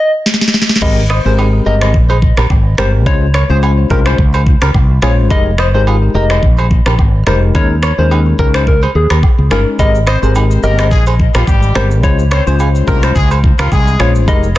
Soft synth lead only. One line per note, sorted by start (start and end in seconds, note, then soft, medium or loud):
0.00 0.11 D#5 medium
0.82 0.95 D#5 loud
1.11 1.24 C5 medium
1.26 1.36 C5 medium
1.66 1.79 D#5 medium
1.82 1.92 D#5 medium
2.79 2.92 C5 medium
3.07 3.20 C#5 loud
3.35 3.48 C#5 medium
3.50 3.61 C5 medium
3.91 4.04 A#4 medium
4.06 4.17 C5 medium
5.03 5.16 C#5 medium
5.31 5.44 D#5 loud
5.59 5.72 C5 medium
5.74 5.85 C5 medium
6.15 6.28 D#5 medium
6.31 6.41 D#5 medium
7.27 7.40 C5 medium
7.56 7.68 C#5 loud
7.83 7.96 C#5 medium
7.99 8.09 C5 medium
8.39 8.52 A#4 medium
8.55 8.65 C5 medium
8.68 8.81 A#4 medium
8.96 9.09 G#4 medium
9.52 9.65 A#4 medium
9.80 9.93 D#5 loud
10.07 10.20 C5 medium
10.23 10.33 C5 medium
10.63 10.76 D#5 medium
10.79 10.90 D#5 medium
11.76 11.89 C5 medium
12.04 12.17 C#5 loud
12.32 12.45 C#5 medium
12.47 12.58 C5 medium
12.88 13.01 A#4 medium
13.04 13.14 C5 medium
14.00 14.13 C#5 medium
14.28 14.41 D#5 loud